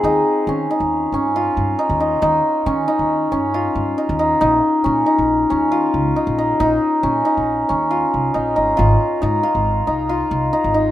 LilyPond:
<<
  \new Staff \with { instrumentName = "Hammered dulcimer" } { \time 5/4 \key ees \mixolydian \tempo 4 = 137 ees'4 des'8 ees'4 des'8 f'4 ees'8 ees'8 | ees'4 des'8 ees'4 des'8 f'4 ees'8 ees'8 | ees'4 des'8 ees'4 des'8 f'4 ees'8 ees'8 | ees'4 des'8 ees'4 des'8 f'4 ees'8 ees'8 |
f'4 ees'8 f'4 ees'8 f'4 ees'8 ees'8 | }
  \new Staff \with { instrumentName = "Upright bass" } { \clef bass \time 5/4 \key ees \mixolydian ees,8 r8 ees8 r16 ees,8. g,4 g,8 r16 ees,8. | ees,8 r8 ees8 r16 ees,8. g,4 g,8 r16 ees,8. | bes,,8 r8 bes,8 r16 bes,,8. ees,4 des,8 r16 bes,,8. | bes,,8 r8 bes,8 r16 bes,,8. ees,4 c,8 bes,,8 aes,,8 |
aes,,8 r8 aes,8 r16 aes,,8. c,4 c,8 r16 aes,,8. | }
>>